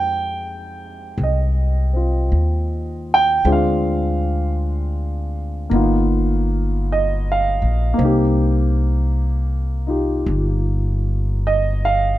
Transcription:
0, 0, Header, 1, 3, 480
1, 0, Start_track
1, 0, Key_signature, -3, "minor"
1, 0, Tempo, 1138520
1, 1454, Time_signature, 4, 2, 24, 8
1, 5137, End_track
2, 0, Start_track
2, 0, Title_t, "Grand piano"
2, 0, Program_c, 0, 0
2, 0, Control_c, 0, 64, 127
2, 0, Note_on_c, 0, 56, 45
2, 0, Note_on_c, 0, 60, 41
2, 0, Note_on_c, 0, 63, 42
2, 0, Note_on_c, 0, 67, 50
2, 0, Note_on_c, 0, 79, 94
2, 485, Note_off_c, 0, 79, 0
2, 521, Note_on_c, 0, 75, 53
2, 809, Note_off_c, 0, 60, 0
2, 815, Note_on_c, 0, 60, 37
2, 828, Note_on_c, 0, 65, 42
2, 1298, Note_off_c, 0, 75, 0
2, 1324, Note_on_c, 0, 79, 90
2, 1441, Note_off_c, 0, 56, 0
2, 1452, Note_off_c, 0, 60, 0
2, 1455, Note_off_c, 0, 65, 0
2, 1455, Note_on_c, 0, 56, 55
2, 1457, Note_off_c, 0, 63, 0
2, 1458, Note_on_c, 0, 60, 48
2, 1459, Note_on_c, 0, 62, 50
2, 1460, Control_c, 0, 64, 0
2, 1462, Note_off_c, 0, 79, 0
2, 1462, Note_on_c, 0, 65, 61
2, 1466, Note_off_c, 0, 67, 0
2, 1486, Note_on_c, 0, 77, 75
2, 1522, Control_c, 0, 64, 127
2, 1930, Note_off_c, 0, 77, 0
2, 2402, Note_on_c, 0, 58, 53
2, 2409, Note_off_c, 0, 56, 0
2, 2411, Note_off_c, 0, 60, 0
2, 2411, Note_off_c, 0, 62, 0
2, 2411, Note_on_c, 0, 59, 48
2, 2413, Note_off_c, 0, 65, 0
2, 2414, Control_c, 0, 64, 0
2, 2415, Note_on_c, 0, 63, 48
2, 2426, Note_on_c, 0, 65, 56
2, 2491, Control_c, 0, 64, 127
2, 2919, Note_on_c, 0, 75, 73
2, 3060, Note_off_c, 0, 75, 0
2, 3085, Note_on_c, 0, 77, 85
2, 3327, Note_off_c, 0, 77, 0
2, 3340, Note_off_c, 0, 58, 0
2, 3346, Note_on_c, 0, 58, 56
2, 3362, Note_on_c, 0, 60, 48
2, 3369, Note_off_c, 0, 59, 0
2, 3371, Note_off_c, 0, 63, 0
2, 3372, Control_c, 0, 64, 0
2, 3376, Note_off_c, 0, 65, 0
2, 3379, Note_on_c, 0, 63, 48
2, 3394, Note_on_c, 0, 67, 64
2, 3456, Control_c, 0, 64, 127
2, 4154, Note_off_c, 0, 63, 0
2, 4160, Note_on_c, 0, 63, 41
2, 4166, Note_on_c, 0, 65, 38
2, 4167, Note_off_c, 0, 67, 0
2, 4173, Note_on_c, 0, 67, 46
2, 4835, Note_on_c, 0, 75, 82
2, 4979, Note_off_c, 0, 75, 0
2, 4996, Note_on_c, 0, 77, 86
2, 5137, Note_off_c, 0, 58, 0
2, 5137, Note_off_c, 0, 60, 0
2, 5137, Note_off_c, 0, 63, 0
2, 5137, Note_off_c, 0, 65, 0
2, 5137, Note_off_c, 0, 67, 0
2, 5137, Note_off_c, 0, 77, 0
2, 5137, End_track
3, 0, Start_track
3, 0, Title_t, "Upright bass"
3, 0, Program_c, 1, 32
3, 0, Note_on_c, 1, 41, 80
3, 474, Note_off_c, 1, 41, 0
3, 496, Note_on_c, 1, 36, 76
3, 961, Note_off_c, 1, 36, 0
3, 977, Note_on_c, 1, 39, 68
3, 1438, Note_off_c, 1, 39, 0
3, 1453, Note_on_c, 1, 38, 85
3, 2391, Note_off_c, 1, 38, 0
3, 2409, Note_on_c, 1, 31, 83
3, 3196, Note_off_c, 1, 31, 0
3, 3212, Note_on_c, 1, 34, 66
3, 3356, Note_off_c, 1, 34, 0
3, 3368, Note_on_c, 1, 36, 92
3, 4309, Note_off_c, 1, 36, 0
3, 4327, Note_on_c, 1, 31, 83
3, 5120, Note_off_c, 1, 31, 0
3, 5137, End_track
0, 0, End_of_file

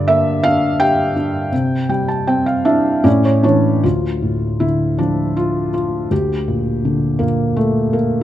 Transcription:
0, 0, Header, 1, 2, 480
1, 0, Start_track
1, 0, Tempo, 733496
1, 998, Time_signature, 3, 2, 24, 8
1, 1490, Tempo, 781250
1, 2450, Tempo, 756620
1, 3890, Tempo, 724638
1, 5295, End_track
2, 0, Start_track
2, 0, Title_t, "Felt piano"
2, 0, Program_c, 0, 0
2, 0, Control_c, 0, 64, 127
2, 0, Note_on_c, 0, 43, 71
2, 0, Note_on_c, 0, 50, 52
2, 0, Note_on_c, 0, 74, 83
2, 50, Note_on_c, 0, 76, 97
2, 56, Note_on_c, 0, 58, 61
2, 285, Note_on_c, 0, 77, 103
2, 292, Note_on_c, 0, 62, 63
2, 295, Note_off_c, 0, 76, 0
2, 522, Note_on_c, 0, 79, 101
2, 524, Note_on_c, 0, 67, 60
2, 527, Note_off_c, 0, 77, 0
2, 731, Note_off_c, 0, 50, 0
2, 751, Note_off_c, 0, 62, 0
2, 760, Note_on_c, 0, 62, 57
2, 969, Note_off_c, 0, 43, 0
2, 975, Note_off_c, 0, 58, 0
2, 984, Note_off_c, 0, 67, 0
2, 992, Note_off_c, 0, 62, 0
2, 996, Note_on_c, 0, 48, 75
2, 1006, Control_c, 0, 64, 0
2, 1010, Note_off_c, 0, 74, 0
2, 1134, Control_c, 0, 64, 127
2, 1230, Note_off_c, 0, 79, 0
2, 1238, Note_on_c, 0, 55, 56
2, 1239, Note_on_c, 0, 79, 72
2, 1356, Note_off_c, 0, 79, 0
2, 1364, Note_on_c, 0, 81, 71
2, 1480, Note_off_c, 0, 81, 0
2, 1489, Note_on_c, 0, 60, 60
2, 1489, Note_on_c, 0, 79, 77
2, 1598, Note_off_c, 0, 79, 0
2, 1604, Note_on_c, 0, 77, 74
2, 1715, Note_off_c, 0, 77, 0
2, 1718, Note_on_c, 0, 64, 59
2, 1719, Note_on_c, 0, 62, 87
2, 1721, Note_on_c, 0, 76, 74
2, 1940, Note_off_c, 0, 48, 0
2, 1942, Note_off_c, 0, 55, 0
2, 1947, Note_off_c, 0, 76, 0
2, 1951, Note_off_c, 0, 60, 0
2, 1955, Note_off_c, 0, 64, 0
2, 1957, Note_on_c, 0, 45, 72
2, 1957, Note_on_c, 0, 61, 85
2, 1959, Note_on_c, 0, 74, 70
2, 1970, Note_off_c, 0, 62, 0
2, 1974, Control_c, 0, 64, 0
2, 2066, Control_c, 0, 64, 127
2, 2075, Note_off_c, 0, 74, 0
2, 2087, Note_on_c, 0, 73, 73
2, 2197, Note_off_c, 0, 73, 0
2, 2200, Note_on_c, 0, 62, 81
2, 2206, Note_on_c, 0, 73, 76
2, 2208, Note_on_c, 0, 52, 56
2, 2212, Note_off_c, 0, 61, 0
2, 2431, Note_off_c, 0, 45, 0
2, 2431, Note_off_c, 0, 73, 0
2, 2442, Note_off_c, 0, 52, 0
2, 2447, Note_on_c, 0, 65, 62
2, 2451, Note_on_c, 0, 38, 48
2, 2453, Note_off_c, 0, 62, 0
2, 2459, Control_c, 0, 64, 0
2, 2577, Control_c, 0, 64, 127
2, 2693, Note_on_c, 0, 45, 37
2, 2932, Note_on_c, 0, 64, 70
2, 2935, Note_on_c, 0, 50, 45
2, 2949, Note_off_c, 0, 65, 0
2, 3174, Note_on_c, 0, 53, 45
2, 3177, Note_on_c, 0, 62, 66
2, 3180, Note_off_c, 0, 64, 0
2, 3399, Note_off_c, 0, 62, 0
2, 3419, Note_on_c, 0, 65, 73
2, 3627, Note_off_c, 0, 45, 0
2, 3645, Note_off_c, 0, 65, 0
2, 3654, Note_on_c, 0, 65, 67
2, 3864, Note_off_c, 0, 50, 0
2, 3865, Note_off_c, 0, 38, 0
2, 3868, Note_off_c, 0, 53, 0
2, 3891, Note_on_c, 0, 38, 54
2, 3894, Note_on_c, 0, 67, 72
2, 3898, Note_off_c, 0, 65, 0
2, 3899, Control_c, 0, 64, 0
2, 4019, Control_c, 0, 64, 127
2, 4134, Note_on_c, 0, 46, 45
2, 4380, Note_on_c, 0, 50, 51
2, 4605, Note_on_c, 0, 58, 74
2, 4609, Note_off_c, 0, 46, 0
2, 4619, Note_on_c, 0, 46, 49
2, 4636, Note_off_c, 0, 67, 0
2, 4854, Note_on_c, 0, 57, 76
2, 4855, Note_off_c, 0, 58, 0
2, 5097, Note_on_c, 0, 58, 68
2, 5099, Note_off_c, 0, 57, 0
2, 5295, Note_off_c, 0, 38, 0
2, 5295, Note_off_c, 0, 46, 0
2, 5295, Note_off_c, 0, 50, 0
2, 5295, Note_off_c, 0, 58, 0
2, 5295, End_track
0, 0, End_of_file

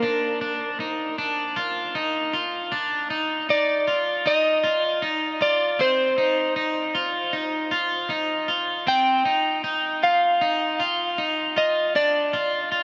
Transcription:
0, 0, Header, 1, 3, 480
1, 0, Start_track
1, 0, Tempo, 769231
1, 1698, Time_signature, 4, 2, 24, 8
1, 8006, End_track
2, 0, Start_track
2, 0, Title_t, "Electric slide guitar"
2, 0, Program_c, 0, 29
2, 0, Note_on_c, 0, 70, 82
2, 718, Note_off_c, 0, 70, 0
2, 2186, Note_on_c, 0, 74, 104
2, 2663, Note_off_c, 0, 74, 0
2, 2665, Note_on_c, 0, 75, 107
2, 3117, Note_off_c, 0, 75, 0
2, 3382, Note_on_c, 0, 74, 97
2, 3624, Note_on_c, 0, 72, 111
2, 3627, Note_off_c, 0, 74, 0
2, 4076, Note_off_c, 0, 72, 0
2, 5543, Note_on_c, 0, 79, 118
2, 5996, Note_off_c, 0, 79, 0
2, 6262, Note_on_c, 0, 77, 108
2, 7224, Note_on_c, 0, 75, 87
2, 7249, Note_off_c, 0, 77, 0
2, 7460, Note_off_c, 0, 75, 0
2, 7463, Note_on_c, 0, 74, 92
2, 8006, Note_off_c, 0, 74, 0
2, 8006, End_track
3, 0, Start_track
3, 0, Title_t, "Clean electric guitar"
3, 0, Program_c, 1, 27
3, 15, Note_on_c, 1, 62, 83
3, 250, Note_off_c, 1, 62, 0
3, 257, Note_on_c, 1, 62, 79
3, 497, Note_off_c, 1, 62, 0
3, 500, Note_on_c, 1, 63, 76
3, 736, Note_off_c, 1, 63, 0
3, 739, Note_on_c, 1, 62, 90
3, 976, Note_on_c, 1, 65, 89
3, 978, Note_off_c, 1, 62, 0
3, 1217, Note_off_c, 1, 65, 0
3, 1217, Note_on_c, 1, 63, 85
3, 1456, Note_on_c, 1, 65, 69
3, 1458, Note_off_c, 1, 63, 0
3, 1696, Note_on_c, 1, 62, 102
3, 1697, Note_off_c, 1, 65, 0
3, 1934, Note_off_c, 1, 62, 0
3, 1936, Note_on_c, 1, 63, 87
3, 2171, Note_off_c, 1, 63, 0
3, 2178, Note_on_c, 1, 63, 75
3, 2417, Note_on_c, 1, 65, 77
3, 2418, Note_off_c, 1, 63, 0
3, 2656, Note_on_c, 1, 63, 90
3, 2658, Note_off_c, 1, 65, 0
3, 2892, Note_on_c, 1, 65, 94
3, 2897, Note_off_c, 1, 63, 0
3, 3134, Note_on_c, 1, 63, 84
3, 3135, Note_off_c, 1, 65, 0
3, 3374, Note_on_c, 1, 65, 71
3, 3376, Note_off_c, 1, 63, 0
3, 3614, Note_on_c, 1, 60, 100
3, 3616, Note_off_c, 1, 65, 0
3, 3852, Note_off_c, 1, 60, 0
3, 3855, Note_on_c, 1, 63, 83
3, 4086, Note_off_c, 1, 63, 0
3, 4094, Note_on_c, 1, 63, 84
3, 4335, Note_on_c, 1, 65, 77
3, 4336, Note_off_c, 1, 63, 0
3, 4573, Note_on_c, 1, 63, 78
3, 4576, Note_off_c, 1, 65, 0
3, 4813, Note_on_c, 1, 65, 96
3, 4816, Note_off_c, 1, 63, 0
3, 5052, Note_on_c, 1, 63, 82
3, 5055, Note_off_c, 1, 65, 0
3, 5292, Note_on_c, 1, 65, 65
3, 5295, Note_off_c, 1, 63, 0
3, 5533, Note_on_c, 1, 60, 99
3, 5535, Note_off_c, 1, 65, 0
3, 5772, Note_off_c, 1, 60, 0
3, 5774, Note_on_c, 1, 63, 80
3, 6007, Note_off_c, 1, 63, 0
3, 6014, Note_on_c, 1, 63, 90
3, 6256, Note_off_c, 1, 63, 0
3, 6258, Note_on_c, 1, 65, 70
3, 6498, Note_off_c, 1, 65, 0
3, 6498, Note_on_c, 1, 63, 98
3, 6737, Note_on_c, 1, 65, 88
3, 6738, Note_off_c, 1, 63, 0
3, 6977, Note_off_c, 1, 65, 0
3, 6977, Note_on_c, 1, 63, 74
3, 7216, Note_on_c, 1, 65, 79
3, 7218, Note_off_c, 1, 63, 0
3, 7457, Note_off_c, 1, 65, 0
3, 7458, Note_on_c, 1, 62, 97
3, 7696, Note_on_c, 1, 65, 74
3, 7698, Note_off_c, 1, 62, 0
3, 7928, Note_off_c, 1, 65, 0
3, 7935, Note_on_c, 1, 65, 80
3, 8006, Note_off_c, 1, 65, 0
3, 8006, End_track
0, 0, End_of_file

